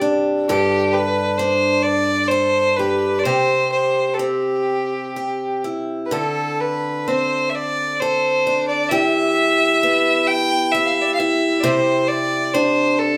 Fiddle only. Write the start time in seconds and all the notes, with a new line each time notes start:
0.49 G4
0.93 B4
1.38 C5
1.82 D5
2.28 C5
2.76 B4
3.19 D5
3.24 C5
3.72 C5
4.14 G4 A4
6.06 B4
6.13 A4
6.61 B4
7.08 C5
7.50 E5
7.55 D5
8.00 C5
8.68 D5
8.89 E5
10.27 G5
10.72 E5
10.85 E5 F5
11.01 D5 E5
11.14 F5
11.19 E5
11.60 C5 D5
12.08 D5
12.54 C5
12.99 A4